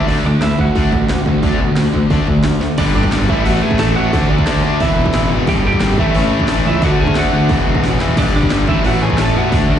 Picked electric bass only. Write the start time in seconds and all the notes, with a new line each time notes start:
0.08 D2
0.24 D2
0.41 D2
0.59 D2
0.75 D2
0.93 A1
1.09 D2
1.26 D2
1.43 D2
1.59 B2
1.75 D2
1.94 D2
2.11 D2
2.27 D2
2.43 D2
2.61 D2
2.78 G1
2.95 G1
3.12 G#1
3.29 A1
3.45 A1
3.64 A1
3.80 A1
3.97 A1
4.13 D2
4.30 D2
4.47 D2
4.64 D2
4.80 E1
4.97 E1
5.14 A1
5.31 G#1
5.47 G1
5.65 G1
5.81 G#1
5.98 A1
6.15 A1
6.32 A1
6.50 A1
6.67 C#2
6.82 D2
7.00 D2
7.16 D2
7.34 D2
7.50 E1
7.67 E1
7.83 A1
8.01 E2
8.18 G1
8.34 G1
8.51 G1
8.68 A1
8.85 A1
9.02 A1
9.19 A1
9.36 E2
9.52 D2
9.69 D2